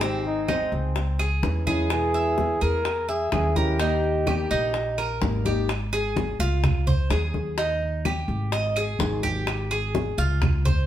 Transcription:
Already playing: upright bass G#1
0.01 steel-string acoustic guitar D#3 G#3 C4 D#4 G#4, cuban tres C4, muted trumpet G4, high bongo, high conga
0.25 muted trumpet D#4, high conga
0.48 steel-string acoustic guitar G#3 C4 D#4 G#4, muted trumpet C4, cuban tres D#4, high bongo, high conga, claves
0.72 upright bass C#2, high bongo, high conga
0.95 muted steel-string acoustic guitar stroke, high bongo, high conga
1.19 cuban tres G#4, high bongo, high conga, claves
1.43 upright bass E2, steel-string acoustic guitar E3 G#3 C#4 E4, high bongo, low bongo, high conga
1.66 steel-string acoustic guitar E3 G#3 C#4 E4, cuban tres G#4, high bongo, high conga
1.90 steel-string acoustic guitar B2 E3 G#3 B3 E4, muted trumpet G#4, high bongo, high conga, claves
2.14 cuban tres E5, high conga
2.37 steel-string acoustic guitar E3 G#3 B3 E4, high bongo, high conga
2.61 upright bass E2, cuban tres G#4, muted trumpet A#4, high conga
2.85 muted steel-string acoustic guitar stroke, high bongo, high conga, claves
3.09 muted trumpet G#4, cuban tres E5, high conga
3.32 upright bass D#2, steel-string acoustic guitar E3 G#3 C#4 E4, muted trumpet G#4, high bongo, low bongo, high conga, claves
3.55 steel-string acoustic guitar G#3 C#4 E4, muted trumpet G4, cuban tres A#4, high conga
3.79 steel-string acoustic guitar D#3 G3 A#3 D#4 G4, cuban tres D#4, high bongo, high conga
4.04 high conga
4.26 steel-string acoustic guitar G3 A#3 D#4 G4, cuban tres G4, high bongo, high conga, claves
4.51 upright bass A#1, cuban tres D#4, high bongo, high conga
4.74 muted steel-string acoustic guitar stroke, high bongo, high conga
4.98 cuban tres A#4, high bongo, high conga, claves
5.21 upright bass G#1, steel-string acoustic guitar G3 A#3 D#4 G4, high bongo, low bongo, high conga
5.45 steel-string acoustic guitar G3 A#3 D#4 G4, cuban tres G4, high bongo, high conga
5.69 high bongo, high conga, claves
5.93 cuban tres G#4, high bongo, high conga
6.17 high bongo, high conga
6.39 upright bass C#2, cuban tres F4, high bongo, high conga
6.64 high bongo, high conga, low conga, claves
6.87 cuban tres C5, high conga, low conga
7.10 upright bass D#2, cuban tres G#4, high bongo, low bongo, high conga, claves
7.34 high bongo, high conga
7.58 cuban tres D#4, high bongo, high conga
7.82 high conga
8.05 cuban tres G4, high bongo, high conga, claves
8.28 upright bass G#1, high bongo, high conga
8.52 cuban tres D#5, high bongo, high conga
8.76 cuban tres G#4, high bongo, high conga, claves
8.99 upright bass G#1, high bongo, low bongo, high conga
9.23 cuban tres G4, high bongo, high conga
9.47 high bongo, high conga, claves
9.71 cuban tres G#4, high bongo, high conga
9.95 high bongo, high conga
10.18 upright bass C#2, cuban tres F4, high bongo, high conga
10.42 high bongo, high conga, low conga, claves
10.65 cuban tres C5, high conga, low conga

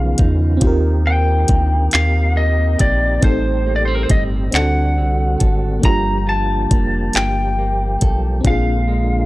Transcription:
Already playing: analog synth bass B1, clean electric guitar C#3 F3, tonewheel organ D#3 B3 C#4 F4, fm electric piano B3 D#4 F4 G#4, lead electric guitar F5
0.18 analog synth bass E2, clean electric guitar D#4, kick, closed hi-hat
0.57 fm electric piano C4 F4, tonewheel organ G4
0.61 analog synth bass D#2, clean electric guitar D#3, tonewheel organ A#3 C4 D#4, fm electric piano G4, kick, closed hi-hat
0.67 fm electric piano A#4
1.06 clean electric guitar C4, lead electric guitar G5
1.48 analog synth bass D2, clean electric guitar A#3, kick, closed hi-hat
1.91 analog synth bass D#2, clean electric guitar C4, lead electric guitar F5, clap, closed hi-hat
2.36 clean electric guitar A#3, lead electric guitar D#5
2.79 analog synth bass A#1, clean electric guitar G4, lead electric guitar D5, kick, closed hi-hat
3.21 analog synth bass A1, clean electric guitar A2, tonewheel organ G3, fm electric piano C4 D#4 G4, lead electric guitar C5, kick, closed hi-hat
3.25 fm electric piano A4
3.66 clean electric guitar A#3
3.76 lead electric guitar D5
3.85 clean electric guitar C4, lead electric guitar C5
3.95 lead electric guitar A#4
4.03 lead electric guitar C5
4.09 analog synth bass G1, clean electric guitar G3, lead electric guitar D#5, kick, closed hi-hat
4.51 analog synth bass D2, clean electric guitar D3, tonewheel organ D3 F#4, fm electric piano C4 D4 D#4, lead electric guitar F#5, clap, closed hi-hat
4.56 fm electric piano A4
4.61 fm electric piano F#4
4.98 analog synth bass C2, clean electric guitar C4
5.40 analog synth bass G#1, clean electric guitar A4, kick, closed hi-hat
5.79 tonewheel organ F3 A#3 G4, fm electric piano A#3 D4, closed hi-hat
5.83 analog synth bass G1, clean electric guitar G3, fm electric piano F4, lead electric guitar A#5, kick
5.88 fm electric piano G4
6.27 clean electric guitar F4, lead electric guitar A5
6.71 analog synth bass F1, clean electric guitar A#3, kick, closed hi-hat
7.13 analog synth bass G1, clean electric guitar F4, lead electric guitar G5, clap, closed hi-hat
7.59 clean electric guitar A#3
8.01 analog synth bass B1, clean electric guitar A4, kick, closed hi-hat
8.41 fm electric piano C4 D4, kick, closed hi-hat
8.45 analog synth bass A#1, clean electric guitar A#2, tonewheel organ D3 G#3 F4, fm electric piano F4, lead electric guitar F5
8.50 fm electric piano G#4
8.88 clean electric guitar G#3

